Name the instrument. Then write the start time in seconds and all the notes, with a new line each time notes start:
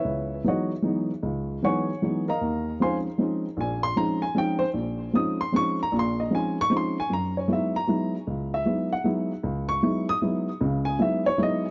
grand piano
Already playing: E4 B4 C#5 E5
0.04 C#2
0.44 E3 F#3 G#3 B3 D#4 F#4 C#5 F#5
0.49 D#5
0.82 E3 F#3 G#3 B3 D#4
1.23 C#2
1.62 E3 F#3 G#3 B3 D#4 C#5 F#5 G#5 C#6
2.02 E3 F#3 G#3 B3 D#4
2.28 A#4 D#5 F5 A#5
2.41 D#2
2.80 F3 G#3 C4 C#4 D#4 C5 F5 G#5 C6
3.18 F3 G#3 C4 C#4 D#4
3.57 A#1 A#2 G#5
3.83 C6
3.96 F3 G#3 C4 C#4 D#4 A#5
4.22 G#5
4.35 F3 G#3 C4 C#4 D#4 G5
4.59 C5
4.74 A#1
5.13 F3 G#3 C4 C#4 D#4 D#6
5.41 C6
5.52 F3 G#3 C4 C#4 D#4 C#6
5.83 A#5
5.92 A#1 A#2
5.99 C6
6.20 D#5
6.31 F3 G#3 C4 C#4 D#4
6.35 G#5
6.61 C#6
6.70 F3 G#3 C4 C#4 D#4
6.77 C6
7.00 G#5
7.10 F#2 A#5
7.37 C#5
7.48 F#3 G#3 B3 D#4 E4
7.53 E5
7.76 A#5
7.87 F#3 G#3 B3 D#4 E4
8.27 C#2
8.54 E5
8.65 F#3 G#3 B3 D#4 E4
8.93 F#5
9.04 F#3 G#3 B3 D#4 E4
9.43 C#2
9.69 C#6
9.83 F#3 G#3 B3 D#4 E4
10.09 D#6
10.22 F#3 G#3 B3 D#4 E4
10.61 C#2 C#3
10.85 G#5
10.99 F#3 G#3 B3 D#4 E4 E5
11.26 C#5
11.38 F#3 G#3 B3 D#4 E4
11.43 D#5